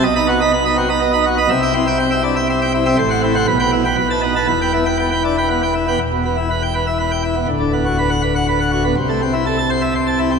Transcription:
<<
  \new Staff \with { instrumentName = "Pipe organ" } { \time 3/4 \key e \minor \tempo 4 = 122 << { dis''16 <dis'' b''>16 fis'16 <dis'' b''>16 b''16 <dis'' b''>16 fis'16 <dis'' b''>16 dis''16 <dis'' b''>16 fis'16 <dis'' b''>16 | e''16 <e'' g''>16 e'16 <e'' g''>16 g''16 <e'' g''>16 e'16 <e'' g''>16 e''16 <e'' g''>16 e'16 <e'' g''>16 | c''16 <c'' fis''>16 e'16 <c'' fis''>16 b'16 <b' g''>16 e'16 <b' g''>16 b'16 <b' a''>16 dis'16 <b' a''>16 | b'16 <b' g''>16 e'16 <b' g''>16 g''16 <b' g''>16 e'16 <b' g''>16 b'16 <b' g''>16 e'16 <b' g''>16 |
r4 r16 g''16 r4. | r4 r16 fis''16 r4. | r4 r16 a''16 r4. | } \\ { b,16 dis'16 b16 dis'16 b16 dis'16 c'16 dis'16 b16 dis'16 r16 b16 | c8 c'16 r16 c'16 r16 d'16 r16 c'16 r8 c'16 | a,8 c'16 r16 b,8 b16 r16 b,8 b16 r16 | e,8 b16 r16 b16 r16 d'16 r16 b16 r8 b16 |
e,16 b,16 b16 e'16 b'16 r16 b'16 e''16 b'16 g''16 e'16 b16 | d,16 d16 b16 fis'16 b'16 r16 b'16 fis''16 b'16 fis''16 fis'16 b16 | c16 a16 c'16 e'16 a'16 r16 c''16 e''16 c''16 a''16 e'16 c'16 | } >> }
  \new Staff \with { instrumentName = "Pipe organ" } { \clef bass \time 3/4 \key e \minor b,,2. | c,2. | a,,4 b,,4 b,,4 | e,,2. |
e,,2. | d,,2. | c,2. | }
>>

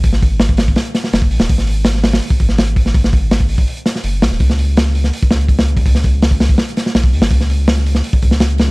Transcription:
<<
  \new Staff \with { instrumentName = "Sub bass" } { \clef bass \time 4/4 \key gis \minor \tempo 4 = 165 gis,,2 r4 fis,,8 b,,16 dis,,16 | gis,,2 r8 gis,,4. | gis,,2 r4 fis,,8 b,,16 dis,,16 | cis,2 r8 cis,4. |
cis,2 r4 b,,8 e,16 gis,,16 | cis,2 r8 cis,4. | }
  \new DrumStaff \with { instrumentName = "Drums" } \drummode { \time 4/4 <hho bd>16 sn16 <hho bd>8 <hho sn>16 bd16 <hho sn>16 bd16 <hho sn>16 hh16 <hho sn>16 sn16 <hho sn>16 bd16 hho16 <hho sn>16 | <hho bd>16 sn16 hho8 <hho sn>16 sn16 <hho sn>16 <hho sn>16 hho16 bd16 <hho bd>16 sn16 <hho sn>16 hh16 <hho bd>16 sn16 | <hho bd>16 sn16 <hho bd>8 <hho sn>16 bd16 hho16 bd16 hho16 hh16 <hho sn>16 sn16 hho8 <hho sn>16 sn16 | <hho bd>16 sn16 hho8 <hho sn>16 sn16 hho16 sn16 hho16 bd16 <hho sn>16 hh16 <hho bd>16 <hho sn>16 hh16 <hho bd>16 |
<hho bd>16 sn16 <hho bd>8 <hho sn>16 bd16 <hho sn>16 bd16 <hho sn>16 hh16 <hho sn>16 sn16 <hho sn>16 bd16 hho16 <hho sn>16 | <hho bd>16 sn16 hho8 <hho sn>16 sn16 hho16 sn16 hho16 bd16 <hho bd>16 sn16 <hho sn>16 hh16 <hho sn>8 | }
>>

